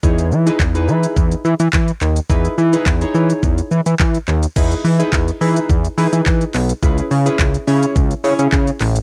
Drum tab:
CC |----------------|----------------|x---------------|----------------|
HH |-x-x-x-x-x-x-x-x|-x-x-x-x-x-x-x-x|-xox-xox-xox-xox|-xox-xox-xox-xox|
SH |xxxxxxxxxxxxxxxx|xxxxxxxxxxxxxxxx|xxxxxxxxxxxxxxxx|xxxxxxxxxxxxxxxx|
CP |----x-------x-x-|----x-------x-x-|----x-------x-x-|----x-------x-x-|
BD |o---o---o---o---|o---o---o---o---|o---o---o---o---|o---o---o---o---|